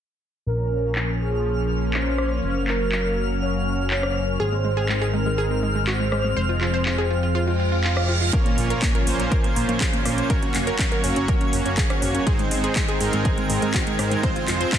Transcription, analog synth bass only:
0.46 2.41 A#1 medium
2.43 4.37 F#1 medium
4.40 6.34 G#1 medium
6.37 8.31 F1 medium
8.58 8.75 A#1 loud
9.07 9.16 A#1 medium
9.20 9.36 A#1 medium
9.56 9.65 A#1 loud
9.69 9.86 A#1 medium
10.05 10.23 A#1 medium
10.55 10.72 F#1 medium
11.04 11.12 F#1 loud
11.16 11.33 F#1 medium
11.53 11.62 F#1 medium
11.65 11.82 F#1 medium
12.02 12.19 F#1 medium
12.51 12.68 G#1 medium
13.00 13.09 G#1 medium
13.13 13.30 G#1 medium
13.50 13.58 G#1 loud
13.62 13.79 G#1 medium
13.99 14.16 G#1 medium
14.48 14.65 F1 medium

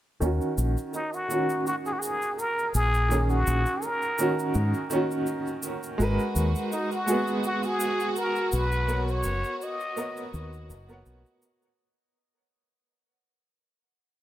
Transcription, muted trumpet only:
0.95 1.16 D#4 medium
1.14 1.67 F#4 medium
1.67 1.76 F#4 medium
1.86 1.94 G#4 medium
1.93 2.01 F#4 medium
1.99 2.40 G#4 loud
2.39 2.75 A#4 loud
2.75 3.32 G#4 loud
3.30 3.85 F#4 loud
3.84 4.56 A#4 medium
6.73 6.91 D#4 medium
6.93 7.41 F#4 medium
7.45 7.67 F#4 medium
7.66 8.19 G#4 loud
8.18 8.55 A#4 medium
8.54 9.12 B4 loud
9.11 9.65 C#5 loud
9.63 10.35 D#5 loud

